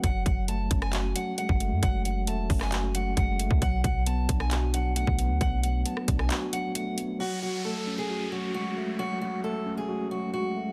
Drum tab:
HH |x-x-x-x-x-x-x-x-|x-x-x-o-x-x-x-x-|x-x-x-x-x-x-x-x-|x-x-x-x-x-x-x-x-|
CP |--------x-------|-------xx-------|--------x-------|--------x-------|
SD |-------r--------|-------r--------|-------r--------|-----r-r--------|
BD |o-o---o------o--|o-----o-----o--o|o-o---o------o--|o-----o---------|

HH |----------------|----------------|
CP |----------------|----------------|
SD |----------------|----------------|
BD |----------------|----------------|